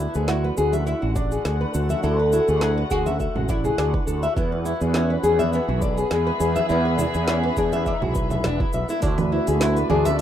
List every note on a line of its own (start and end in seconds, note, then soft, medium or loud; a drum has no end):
0.00 4.37 D3 medium
0.00 0.97 B3 medium
0.00 0.28 D4 medium
0.00 0.14 E4 medium
0.00 0.79 E5 medium
0.00 0.66 B5 medium
0.11 4.37 A3 medium
0.11 6.24 F#5 medium
0.11 shaker soft
0.15 0.49 D2 medium
0.15 0.27 G#4 medium
0.28 0.43 E4 medium
0.28 0.83 F#4 loud
0.28 snare medium
0.28 shaker soft
0.36 6.17 F#4 medium
0.44 0.56 B4 medium
0.44 high conga soft
0.57 0.93 D2 medium
0.57 0.73 G#4 medium
0.57 shaker medium
0.73 0.85 E5 medium
0.73 high conga medium
0.73 shaker soft
0.87 1.15 E4 medium
0.87 1.01 E5 medium
0.87 shaker soft
1.02 1.37 A1 medium
1.02 1.15 F#4 medium
1.16 1.70 D4 medium
1.16 1.30 D5 medium
1.16 kick medium
1.16 shaker medium
1.32 1.44 G#4 medium
1.32 shaker soft
1.45 1.64 D2 medium
1.45 1.60 G#4 medium
1.45 snare medium
1.45 shaker soft
1.61 1.73 B4 medium
1.74 1.93 D2 medium
1.74 1.89 A4 medium
1.74 shaker medium
1.89 2.02 E5 medium
1.89 high conga medium
1.89 shaker soft
2.03 2.38 D2 medium
2.03 2.18 E4 medium
2.03 2.58 A4 medium
2.03 shaker soft
2.19 2.31 B4 medium
2.32 2.47 E4 medium
2.32 high bongo soft
2.32 shaker medium
2.48 2.82 D2 medium
2.48 2.60 G#4 medium
2.48 shaker soft
2.61 2.77 E4 medium
2.61 2.70 G#4 loud
2.61 snare medium
2.61 shaker soft
2.77 2.90 B4 medium
2.91 3.26 D2 medium
2.91 3.49 F#4 loud
2.91 3.06 G#4 medium
2.91 kick medium
2.91 shaker medium
3.06 3.19 E5 medium
3.06 high conga medium
3.06 shaker soft
3.20 3.34 E5 medium
3.20 kick medium
3.20 shaker soft
3.35 3.70 A1 medium
3.35 3.48 F#4 medium
3.35 low conga medium
3.49 3.78 E4 medium
3.49 3.63 D5 medium
3.49 kick medium
3.49 shaker medium
3.64 3.77 G#4 medium
3.64 low conga medium
3.64 shaker soft
3.78 3.96 D2 medium
3.78 4.20 D4 loud
3.78 3.93 G#4 medium
3.78 snare medium
3.78 shaker soft
3.94 4.06 B4 medium
3.94 kick loud
4.07 4.26 D2 medium
4.07 4.21 A4 medium
4.07 high bongo soft
4.07 shaker medium
4.23 4.35 E5 medium
4.23 shaker soft
4.36 4.72 E2 medium
4.36 9.02 E3 medium
4.36 4.97 B3 medium
4.36 4.51 E4 medium
4.36 kick loud
4.36 shaker soft
4.52 4.64 B4 medium
4.65 4.80 E4 medium
4.65 shaker medium
4.74 10.21 B3 medium
4.80 5.15 E2 medium
4.80 4.93 G#4 medium
4.80 10.21 B5 medium
4.80 shaker soft
4.94 5.55 C#4 medium
4.94 5.10 E4 medium
4.94 snare medium
4.94 shaker soft
5.10 5.22 B4 medium
5.10 high conga soft
5.19 5.58 E2 medium
5.19 9.02 G#4 medium
5.24 5.39 G#4 medium
5.24 shaker medium
5.39 5.51 E5 loud
5.39 high conga medium
5.39 shaker soft
5.50 10.21 E5 medium
5.50 5.67 E5 medium
5.50 shaker soft
5.55 6.13 B3 medium
5.68 6.03 B1 loud
5.68 5.81 F#4 medium
5.82 5.96 D5 medium
5.82 kick medium
5.82 shaker medium
5.97 6.10 G#4 medium
5.97 shaker soft
6.11 6.30 E2 medium
6.11 6.54 G#3 medium
6.11 6.26 G#4 medium
6.11 snare medium
6.11 shaker soft
6.27 6.39 B4 medium
6.40 6.59 E2 medium
6.40 6.54 G#4 medium
6.40 shaker medium
6.56 6.68 E5 medium
6.56 high conga medium
6.56 shaker soft
6.69 7.05 E2 loud
6.69 7.30 B3 medium
6.69 6.83 E4 medium
6.69 shaker soft
6.85 6.97 B4 medium
6.98 7.13 E4 medium
6.98 high bongo soft
6.98 low conga medium
6.98 shaker medium
7.14 7.49 E2 medium
7.14 7.26 G#4 medium
7.14 shaker soft
7.28 7.56 C#4 medium
7.28 7.43 E4 medium
7.28 snare loud
7.28 shaker soft
7.43 7.56 B4 medium
7.57 7.92 E2 medium
7.57 7.66 D4 medium
7.57 7.72 G#4 medium
7.57 kick medium
7.57 shaker medium
7.73 7.85 E5 loud
7.73 high conga medium
7.73 shaker soft
7.86 8.70 E4 medium
7.86 8.00 E5 medium
7.86 kick medium
7.86 shaker soft
8.02 8.47 B1 loud
8.02 8.15 F#4 medium
8.02 low conga medium
8.15 8.24 B4 medium
8.15 kick medium
8.15 shaker medium
8.30 8.43 E5 medium
8.30 high conga medium
8.30 low conga medium
8.30 shaker soft
8.44 8.63 E1 medium
8.44 8.59 D4 medium
8.44 snare loud
8.44 shaker soft
8.60 8.72 E4 medium
8.60 kick loud
8.60 high conga soft
8.73 8.83 B1 medium
8.73 8.89 E5 medium
8.73 high bongo soft
8.73 shaker medium
8.89 9.02 E4 medium
8.89 high bongo soft
8.89 shaker soft
9.00 9.38 D2 loud
9.00 10.21 D3 medium
9.00 10.21 A3 medium
9.00 9.61 D4 loud
9.00 10.21 D4 medium
9.00 9.17 E4 medium
9.00 kick loud
9.00 open hi-hat medium
9.00 shaker medium
9.04 10.21 F#4 medium
9.18 9.30 B4 medium
9.18 open hi-hat soft
9.18 low conga medium
9.18 shaker soft
9.25 10.21 F#4 medium
9.32 9.46 E4 medium
9.38 10.21 A3 medium
9.47 9.82 D2 medium
9.47 9.59 G#4 medium
9.47 open hi-hat soft
9.47 high bongo soft
9.47 shaker medium
9.61 9.88 E4 loud
9.61 9.76 E4 medium
9.61 snare loud
9.61 open hi-hat medium
9.61 shaker medium
9.76 9.89 B4 medium
9.76 10.21 D5 medium
9.76 open hi-hat soft
9.76 high conga soft
9.76 shaker soft
9.90 10.21 D2 medium
9.90 10.21 D4 medium
9.90 10.05 G#4 medium
9.90 low conga medium
10.05 10.18 E5 loud
10.05 open hi-hat soft
10.05 high conga medium
10.05 shaker medium